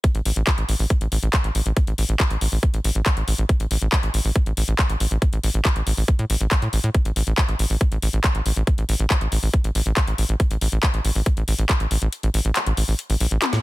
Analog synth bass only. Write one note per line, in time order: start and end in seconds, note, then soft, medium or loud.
0.15 0.21 A1 medium
0.25 0.32 A1 loud
0.36 0.42 A1 loud
0.58 0.64 A1 medium
0.69 0.75 A1 medium
0.79 0.85 A1 medium
1.01 1.07 A1 medium
1.12 1.18 A1 loud
1.23 1.29 A1 medium
1.44 1.50 A1 medium
1.55 1.61 A1 loud
1.66 1.72 A1 loud
1.87 1.93 A1 medium
1.98 2.04 A1 loud
2.09 2.15 A1 medium
2.31 2.37 A1 medium
2.41 2.47 A1 medium
2.52 2.58 A1 medium
2.74 2.80 A1 medium
2.84 2.90 A1 loud
2.95 3.01 A1 loud
3.17 3.23 A1 medium
3.28 3.34 A1 loud
3.38 3.44 A1 loud
3.60 3.66 A1 medium
3.71 3.77 A1 loud
3.82 3.88 A1 loud
4.03 4.09 A1 medium
4.14 4.20 A1 loud
4.25 4.31 A1 medium
4.46 4.52 A1 medium
4.57 4.63 A1 loud
4.68 4.74 A1 medium
4.90 4.96 A1 medium
5.00 5.06 A1 loud
5.11 5.17 A1 loud
5.33 5.39 A1 medium
5.43 5.50 A1 loud
5.54 5.60 A1 medium
5.76 5.82 A1 medium
5.87 5.93 A1 loud
5.97 6.03 A1 medium
6.19 6.25 A2 medium
6.30 6.36 A1 loud
6.41 6.47 A1 medium
6.62 6.68 A2 medium
6.73 6.79 A1 loud
6.84 6.90 A2 loud
7.05 7.11 A1 medium
7.16 7.22 A1 loud
7.27 7.33 A1 medium
7.49 7.55 A1 medium
7.59 7.65 A1 loud
7.70 7.76 A1 medium
7.92 7.98 A1 medium
8.02 8.09 A1 loud
8.13 8.19 A1 loud
8.35 8.41 A1 medium
8.46 8.52 A1 loud
8.56 8.62 A1 loud
8.78 8.84 A1 medium
8.89 8.95 A1 loud
9.00 9.06 A1 loud
9.21 9.27 A1 medium
9.32 9.38 A1 loud
9.43 9.49 A1 medium
9.64 9.70 A1 medium
9.75 9.81 A1 loud
9.86 9.92 A1 medium
10.07 10.14 A1 medium
10.18 10.24 A1 loud
10.29 10.35 A1 medium
10.51 10.57 A1 medium
10.61 10.67 A1 loud
10.72 10.78 A1 medium
10.94 11.00 A1 medium
11.05 11.11 A1 medium
11.15 11.21 A1 medium
11.37 11.43 A1 medium
11.48 11.54 A1 loud
11.59 11.65 A1 medium
11.80 11.86 A1 medium
11.91 11.97 A1 loud
12.02 12.08 A1 loud
12.23 12.29 A1 medium
12.34 12.40 A1 loud
12.45 12.51 A1 medium
12.66 12.73 A1 medium
12.77 12.83 A1 loud
12.88 12.94 A1 medium
13.10 13.16 A1 medium
13.20 13.26 A#1 loud
13.31 13.37 A1 loud
13.53 13.59 A2 medium